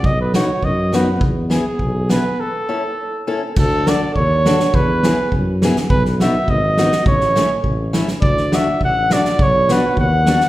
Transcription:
<<
  \new Staff \with { instrumentName = "Flugelhorn" } { \time 2/4 \key a \major \tempo 4 = 103 dis''16 b'16 cis''8 dis''8 b'8 | r8 gis'4 b'8 | a'4. r8 | a'8 d''8 cis''4 |
b'4 r4 | b'8 e''8 dis''4 | cis''4 r4 | d''8 e''8 fis''8 d''8 |
cis''8 b'8 fis''4 | }
  \new Staff \with { instrumentName = "Steel-string acoustic guitar" } { \time 2/4 \key a \major r8 <b dis' fis'>8 r8 <b dis' fis'>8 | r8 <b e' gis'>8 r8 <b e' gis'>8 | r8 <cis' e' a'>8 r8 <cis' e' a'>8 | r8 <d' fis' a'>8 r8 <d' fis' a'>8 |
r8 <b e' gis'>8 r8 <b e' gis'>8 | r8 <b dis' fis'>8 r8 <b dis' fis'>8 | r8 <a cis' e'>8 r8 <a cis' e'>8 | r8 <a d' fis'>8 r8 <a d' fis'>8 |
r8 <b d' fis'>8 r8 <b d' fis'>8 | }
  \new Staff \with { instrumentName = "Tuba" } { \clef bass \time 2/4 \key a \major b,,4 fis,4 | e,4 b,,4 | r2 | d,4 dis,4 |
e,4 fis,4 | b,,4 gis,,4 | a,,4 a,,4 | d,4 a,,4 |
b,,4 dis,4 | }
  \new DrumStaff \with { instrumentName = "Drums" } \drummode { \time 2/4 bd8 sn8 bd8 sn8 | bd8 sn8 bd8 sn8 | r4 r4 | <cymc bd>8 sn8 bd8 sn16 sn16 |
bd8 sn8 bd8 sn16 sn16 | bd16 sn16 sn8 bd8 sn16 sn16 | bd16 sn16 sn8 bd8 sn16 sn16 | bd16 sn16 sn8 bd8 sn16 sn16 |
bd8 sn8 bd8 sn16 sn16 | }
>>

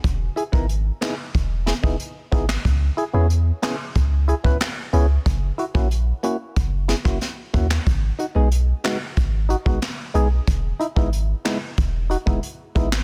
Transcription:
<<
  \new Staff \with { instrumentName = "Synth stab" } { \time 4/4 \key e \lydian \tempo 4 = 92 r8 <e' gis'>16 <b dis' e' ais'>16 r8 <b dis' e' gis'>16 r8. <e' gis'>16 <b dis' e' gis'>16 r8 <b dis' e' gis'>16 r16 | r8 <e' gis'>16 <b cis' e' gis'>16 r8 <b cis' e' gis'>16 r8. <e' gis'>16 <b cis' e' b'>16 r8 <b cis' e' gis'>16 r16 | r8 <e' fis'>16 <ais cis' e' fis'>16 r8 <ais cis' e' fis'>16 r8. <e' gis'>16 <ais cis' e' fis'>16 r8 <ais cis' e' fis'>16 r16 | r8 <dis' fis'>16 <gis b dis' gis'>16 r8 <gis b dis' fis'>16 r8. <dis' fis'>16 <gis b dis' fis'>16 r8 <gis b dis' gis'>16 r16 |
r8 <dis' e'>16 <gis b dis' e'>16 r8 <gis b dis' e'>16 r8. <dis' fis'>16 <gis b dis' e'>16 r8 <gis b dis' e'>16 r16 | }
  \new Staff \with { instrumentName = "Sub bass" } { \clef bass \time 4/4 \key e \lydian e,,8 r16 gis,,8. r8 e,,8. e,,16 r8 gis,,8 | cis,8 r16 e,8. r8 cis,8. cis,16 r8 cis,8 | fis,,8 r16 ais,,8. r8 fis,,8. fis,,16 r8 dis,8 | gis,,8 r16 b,,8. r8 gis,,8. gis,,16 r8 b,,8 |
e,,8 r16 gis,,8. r8 e,,8. e,,16 r8 gis,,8 | }
  \new DrumStaff \with { instrumentName = "Drums" } \drummode { \time 4/4 <hh bd>8 hh16 bd16 hh8 <hc hh sn>8 <hh bd>8 <hh sn>16 bd16 hh8 <hh bd>16 <hc sn>16 | <hh bd>8 hh8 hh8 <hc hh sn>8 <hh bd>8 hh16 bd16 <hc hh sn>8 hh8 | <hh bd>8 hh16 bd16 hh8 hh8 <hh bd>8 <hh sn>16 <bd ss>16 <hh sn>8 <hh bd>16 <hc sn>16 | <hh bd>8 hh8 hh8 <hc hh sn>8 <hh bd>8 hh16 bd16 <hc hh sn>8 hh8 |
<hh bd>8 hh16 bd16 hh8 <hc hh sn>8 <hh bd>8 hh16 bd16 hh8 <hh bd>16 <hc sn>16 | }
>>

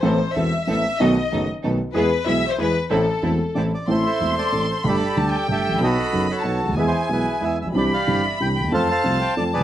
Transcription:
<<
  \new Staff \with { instrumentName = "Violin section" } { \time 3/4 \key a \minor \tempo 4 = 187 c''4 e''4 e''4 | dis''4. r4. | b'4 e''8. c''16 b'4 | a'2 r4 |
c'''2. | b''4 a''8 g''4. | b''2 a''4 | gis''2~ gis''8 r8 |
b''2. | a''2. | }
  \new Staff \with { instrumentName = "Bandoneon" } { \time 3/4 \key a \minor << { r2. | r2. | r2. | r2 d''8 d''8 |
c''8 e''4 d''4 c''8 | d''2 e''4 | dis''4. cis''4 r8 | b'16 c''8. b'4 e''8 e''8 |
d''8 f''4 e''8 g''8 g''8 | f''8 a''4 g''8 d''8 d''8 | } \\ { r2. | r2. | r2. | r2. |
<e' a'>8 <a' c''>4 a'4. | <g' a'>2 <g' a'>4 | <fis' a'>4. <fis' a'>4. | <e' gis'>16 <e' gis'>8. <e' gis'>4. r8 |
g'8 d''4. r4 | <a' c''>8 <c'' f''>4. r8 <gis' b'>8 | } >> }
  \new Staff \with { instrumentName = "String section" } { \time 3/4 \key a \minor <b c' a'>8 r8 <b c' a'>8 r8 <b c' a'>8 r8 | <b dis' a'>8 r8 <b dis' a'>8 r8 <b dis' a'>8 r8 | <b e' gis'>8 r8 <b e' gis'>8 r8 <b e' gis'>8 r8 | <c' e' a'>8 r8 <c' e' a'>8 r8 <c' e' a'>8 r8 |
r2. | r2. | r2. | r2. |
r2. | r2. | }
  \new Staff \with { instrumentName = "Grand piano" } { \clef bass \time 3/4 \key a \minor <a,, a, e b c' a'>8 r8 <e,, e, e b c' a'>8 r8 <a,, a, e b c' a'>8 r8 | <b,, b, dis a b fis'>8 r8 <fis,, fis, dis a b fis'>8 r8 <b,, b, dis a b fis'>8 r8 | <e, e gis b gis'>8 r8 <b,, b, e gis b gis'>8 r8 <e, e gis b gis'>8 r8 | <a,, a, e a c' a'>8 r8 <e,, e, e a c' a'>8 r8 <a,, a, e a c' a'>8 r8 |
<a,, a, e a c' a'>8 r8 <e,, e, e a c' a'>8 r8 <a,, a, e a c' a'>8 r8 | <g,, g, g a d' a'>8 r8 <d, d g a d' a'>8 r8 <g,, g, g a d' a'>8 r32 gis,,32 a,,32 bes,,32 | <b,, b, fis b dis' a'>8 r8 <fis,, fis, fis b dis' a'>8 r8 <b,, b, fis b dis' a'>8 r32 cis,32 d,32 dis,32 | <e, e gis b gis'>8 r8 <b,, b, e gis b gis'>8 r8 <e, e gis b gis'>8 r32 a,,32 bes,,32 b,,32 |
<c, c e c' d' g'>8 r8 <g,, g, e c' d' g'>8 r8 <c, c e c' d' g'>8 r32 d,32 dis,32 e,32 | <f, f a c' a'>8 r8 <c, c f a c' a'>8 r8 <f, f a c' a'>8 r32 cis,32 d,32 r32 | }
>>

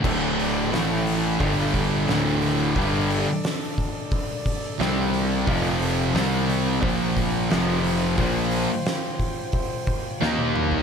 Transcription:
<<
  \new Staff \with { instrumentName = "Synth drone" } { \time 4/4 \key d \phrygian \tempo 4 = 88 << { r2. d''4~ | d''1 | r2 c''4 g''4~ | g''2. r4 | } \\ { a'2 d'2~ | d'2. r4 | r2 f'2~ | f'2. r4 | } >> }
  \new Staff \with { instrumentName = "Distorted electric guitar" } { \clef bass \time 4/4 \key d \phrygian <d, a, d>4 <a, e a>4 <g, d g>4 <d, a, d>4 | <g, d g>8. r2 r16 <c g c'>4 | <f, c f>4 <c g c'>4 <bes, f bes>4 <f, c f>4 | <bes, f bes>8. r2 r16 <ees bes ees'>4 | }
  \new Staff \with { instrumentName = "Distorted electric guitar" } { \clef bass \time 4/4 \key d \phrygian <d, a, d>4 <a, e a>4 <g, d g>4 <d, a, d>4 | <g, d g>8. r2 r16 <c g c'>4 | <f, c f>4 <c g c'>4 <bes, f bes>4 <f, c f>4 | <bes, f bes>8. r2 r16 <ees bes ees'>4 | }
  \new Staff \with { instrumentName = "Overdriven electric guitar" } { \clef bass \time 4/4 \key d \phrygian <d, a, d>4 <a, e a>4 <g, d g>4 <d, a, d>4 | <g, d g>8. r2 r16 <c g c'>4 | <f, c f>4 <c g c'>4 <bes, f bes>4 <f, c f>4 | <bes, f bes>8. r2 r16 <ees bes ees'>4 | }
  \new Staff \with { instrumentName = "Picked electric bass" } { \clef bass \time 4/4 \key d \phrygian d,,4 a,,4 g,,4 d,,4 | g,,8. r2 r16 c,4 | f,,4 c,4 bes,,4 f,,4 | bes,,8. r2 r16 ees,4 | }
  \new DrumStaff \with { instrumentName = "Drums" } \drummode { \time 4/4 <cymc bd>8 hho8 <hho sn>8 hho8 <hho bd>8 <hho bd>8 <hho sn>8 hho8 | <hho bd>8 hho8 <hho sn>8 <hho bd>8 <hho bd>8 <hho bd>8 <hho sn>8 hho8 | <hho bd>8 hho8 <hho sn>8 hho8 <hho bd>8 <hho bd>8 <hho sn>8 hho8 | <hho bd>8 hho8 <hho sn>8 <hho bd>8 <hho bd>8 <hho bd>8 sn16 tommh16 toml16 tomfh16 | }
>>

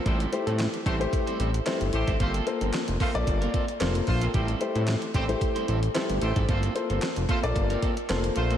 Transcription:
<<
  \new Staff \with { instrumentName = "Grand piano" } { \time 4/4 \key g \dorian \tempo 4 = 112 r8 <a e' g' c''>4 r16 <a e' g' c''>4 r16 <a e' g' c''>4 | r8 <bes f' a' c''>4 r16 <bes f' a' d''>4 r16 <bes f' a' c''>4 | r8 <a e' g' c''>4 r16 <a e' g' c''>4 r16 <a e' g' c''>4 | r8 <bes f' a' c''>4 r16 <bes f' a' d''>4 r16 <bes f' a' c''>4 | }
  \new Staff \with { instrumentName = "Horn section" } { \time 4/4 \key g \dorian <a g' c''>16 r4 r16 <a g' c''>16 r4. r16 <a g' c''>8 | <a f' c''>16 r4 r16 <a f' c''>16 r4. r16 <a f' c''>8 | <a g' c''>16 r4 r16 <a g' c''>16 r4. r16 <a g' c''>8 | <a f' c''>16 r4 r16 <a f' c''>16 r4. r16 <a f' c''>8 | }
  \new Staff \with { instrumentName = "Clean electric guitar" } { \time 4/4 \key g \dorian <g c' e' a'>8 r16 <g c' e' a'>16 r8 <g c' e' a'>16 r8 <g c' e' c''>16 <g c' e' a'>16 r16 <g c' e' a'>16 r8 <g c' e' a'>16 | <bes c' f' a'>8 r16 <bes c' f' a'>16 r8 <bes c' f' a'>16 r8 <bes c' f' bes'>16 <bes c' f' a'>16 r16 <bes c' f' a'>16 r8 <bes c' f' a'>16 | <g c' e' a'>8 r16 <g c' e' a'>16 r8 <g c' e' a'>16 r8 <g c' e' c''>16 <g c' e' a'>16 r16 <g c' e' a'>16 r8 <g c' e' a'>16 | <bes c' f' a'>8 r16 <bes c' f' a'>16 r8 <bes c' f' a'>16 r8 <bes c' f' bes'>16 <bes c' f' a'>16 r16 <bes c' f' a'>16 r8 <bes c' f' a'>16 | }
  \new Staff \with { instrumentName = "Analog synth bass" } { \clef bass \time 4/4 \key g \dorian a,,8 r16 a,8 r16 a,,8 r8 a,,8 r16 g,,16 a,,16 aes,,16 | g,,8 r16 g,,16 r16 f,,16 r16 bes,,16 g,,8 r8 f,,8 bes,,8 | a,,8 r16 a,8 r16 a,,8 r8 a,,8 r16 g,,16 a,,16 aes,,16 | g,,8 r16 g,,16 r16 f,,16 r16 bes,,16 g,,8 r8 f,,8 bes,,8 | }
  \new DrumStaff \with { instrumentName = "Drums" } \drummode { \time 4/4 <hh bd>16 hh16 hh16 hh16 <hc hh sn>16 hh16 <hh bd>16 hh16 <hh bd>16 hh16 hh16 hh16 <hc hh sn>16 hh16 hh16 <hh bd>16 | <hh bd>16 hh16 hh16 hh16 <hc hh sn>16 hh16 <hho bd>16 hh16 <hh bd>16 hh16 <hh bd>16 hh16 <hc hh sn>16 hh16 <hho bd>16 hh16 | <hh bd>16 hh16 hh16 hh16 <hc hh sn>16 hh16 <hh bd>16 hh16 <hh bd>16 hh16 hh16 hh16 <hc hh sn>16 hh16 hh16 <hh bd>16 | <hh bd>16 hh16 hh16 hh16 <hc hh sn>16 hh16 <hh bd>16 hh16 <hh bd>16 hh16 <hh bd>16 hh16 <hc hh sn>16 hh16 hh16 hh16 | }
>>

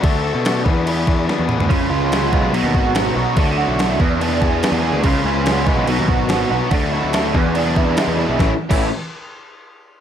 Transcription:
<<
  \new Staff \with { instrumentName = "Overdriven electric guitar" } { \time 4/4 \key a \major \tempo 4 = 143 <d a d' fis' a'>8 <d' fis' a'>8 <a d' fis' a'>8 <e b d' gis' b'>8 <e b d' gis' b'>4 <b d' gis' b'>8 <d' gis' b'>8 | <cis eis gis cis' eis' b'>8 <gis cis' eis' b'>8 <gis cis' eis' b'>8 <gis cis' eis' b'>8 <b, fis b dis' fis'>4 <fis b dis' fis'>8 <b dis' fis'>8 | <d fis a d' fis'>8 <a d' fis'>8 <fis a d' fis'>8 <e b d' gis'>8 <e b d' gis'>4 <e b d' gis'>8 <b d' gis'>8 | <cis eis gis cis' eis' b'>8 <gis cis' eis' b'>8 <gis cis' eis' b'>8 <gis cis' eis' b'>8 <b, fis b dis' fis'>4 <fis b dis' fis'>8 <b dis' fis'>8 |
<d fis a d' fis'>8 <a d' fis'>8 <fis a d' fis'>8 <e b d' gis'>8 <e b d' gis'>4 <e b d' gis'>8 <b d' gis'>8 | <a, e a cis' e'>16 r8 <a, e a cis' e'>8 r2 r8. | }
  \new Staff \with { instrumentName = "Overdriven electric guitar" } { \time 4/4 \key a \major r1 | cis8 eis'8 b8 gis8 b,8 fis'8 b8 fis'8 | d8 fis'8 e'8 e,8 d'8 gis'8 b8 gis'8 | cis8 gis'8 b8 gis8 b,8 fis'8 b8 fis'8 |
d8 e'8 d'8 e,8 d'8 e'8 gis8 e'8 | <a, e a cis' e'>16 r8 <a, e a cis' e'>8 r2 r8. | }
  \new Staff \with { instrumentName = "Picked electric bass" } { \clef bass \time 4/4 \key a \major d,8. b,8. e,4.~ e,16 e,8 d,16 | cis,16 r16 cis,4~ cis,16 b,,16 b,,16 dis,16 gis,,4 b,,16 r16 | d,8. b,,8. e,4.~ e,16 e,8 d,16 | cis,16 r16 cis,4~ cis,16 b,,16 b,,16 dis,16 gis,,4 b,,16 r16 |
d,8. d,8. e,4.~ e,16 e,8 b,,16 | a,,16 r8 a,,8 r2 r8. | }
  \new DrumStaff \with { instrumentName = "Drums" } \drummode { \time 4/4 <cymc bd>4 <cymc sn>8 bd8 cymc8 bd8 sn16 tommh16 toml16 tomfh16 | <cymc bd>4 <cymc sn>8 bd8 cymc16 sn16 bd8 <cymc sn>4 | <cymc bd>4 <cymc sn>8 bd8 cymc8 bd8 <cymc sn>4 | <cymc bd>4 <cymc sn>8 bd8 cymc16 sn16 bd8 <cymc sn>4 |
<cymc bd>4 <cymc sn>8 bd8 cymc16 sn16 bd8 <cymc sn>4 | <bd sn>8. <cymc bd>16 r4 r4 r4 | }
>>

